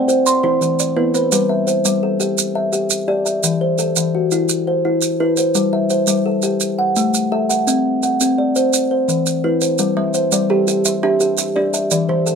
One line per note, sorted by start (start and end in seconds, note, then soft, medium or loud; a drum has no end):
0.00 0.26 C5 medium
0.00 0.44 D5 medium
0.00 0.26 G5 medium
0.08 0.26 C5 medium
0.08 maracas medium
0.26 0.62 C6 medium
0.26 maracas medium
0.43 0.79 E3 medium
0.43 0.97 E4 medium
0.43 0.97 C5 medium
0.61 0.97 E3 medium
0.61 maracas medium
0.79 1.32 D5 medium
0.79 maracas medium
0.96 1.32 B3 medium
0.96 1.32 E4 medium
0.96 1.50 B4 medium
1.14 1.31 B4 medium
1.14 1.50 C5 medium
1.14 maracas medium
1.32 1.67 G3 medium
1.32 1.67 B4 medium
1.32 maracas medium
1.49 2.02 E5 medium
1.67 2.20 C5 medium
1.67 maracas medium
1.85 2.20 G3 medium
1.85 maracas medium
2.03 2.56 A4 medium
2.20 2.71 G4 medium
2.20 maracas medium
2.38 maracas medium
2.55 3.08 E5 medium
2.73 3.07 G4 medium
2.73 maracas medium
2.90 maracas medium
3.08 3.43 G4 medium
3.08 3.61 D5 medium
3.26 3.61 E5 medium
3.26 maracas medium
3.43 3.79 E3 medium
3.43 maracas medium
3.61 4.14 C5 medium
3.78 4.32 A4 medium
3.78 maracas medium
3.96 4.32 E3 medium
3.96 maracas medium
4.15 4.67 F#4 medium
4.31 4.84 E4 medium
4.31 maracas medium
4.49 maracas medium
4.67 5.20 C5 medium
4.85 5.19 E4 medium
5.02 maracas medium
5.20 5.55 E4 medium
5.20 5.73 B4 medium
5.37 5.73 C5 medium
5.37 maracas medium
5.55 5.90 G3 medium
5.55 maracas medium
5.73 6.26 E5 medium
5.90 6.43 C5 medium
5.90 maracas medium
6.07 6.43 G3 medium
6.07 maracas medium
6.26 6.79 A4 medium
6.42 6.79 G4 medium
6.42 maracas medium
6.60 maracas medium
6.79 7.32 F#5 medium
6.96 7.32 A3 medium
6.96 maracas medium
7.14 maracas medium
7.32 7.67 A4 medium
7.32 7.85 E5 medium
7.49 7.85 F#5 medium
7.49 maracas medium
7.67 8.02 C4 medium
7.67 maracas medium
8.03 8.56 F#5 medium
8.03 maracas medium
8.20 8.56 C4 medium
8.20 maracas medium
8.38 8.91 D5 medium
8.56 8.73 C5 medium
8.56 maracas medium
8.73 maracas medium
8.91 9.44 C5 medium
9.08 9.44 E3 medium
9.08 maracas medium
9.26 maracas medium
9.44 9.79 E4 medium
9.44 9.97 B4 medium
9.61 9.97 C5 medium
9.61 maracas medium
9.78 10.15 G3 medium
9.78 maracas medium
9.97 10.32 G3 medium
9.97 10.50 E5 medium
10.14 10.68 C5 medium
10.14 maracas medium
10.32 10.68 G3 medium
10.32 10.85 D5 medium
10.32 maracas medium
10.50 10.85 G4 medium
10.50 11.03 A4 medium
10.67 11.19 G4 medium
10.67 maracas medium
10.85 11.38 E5 medium
10.85 maracas medium
11.03 11.38 D4 medium
11.03 11.56 G4 medium
11.03 11.56 E5 medium
11.20 11.55 G4 medium
11.20 maracas medium
11.38 11.92 E5 medium
11.38 maracas medium
11.56 11.92 D4 medium
11.56 11.91 G4 medium
11.56 12.09 D5 medium
11.74 12.09 E5 medium
11.74 maracas medium
11.91 12.27 E3 medium
11.91 12.27 D5 medium
11.91 maracas medium
12.09 12.35 E3 medium
12.09 12.35 C5 medium
12.26 12.35 A4 medium
12.26 maracas medium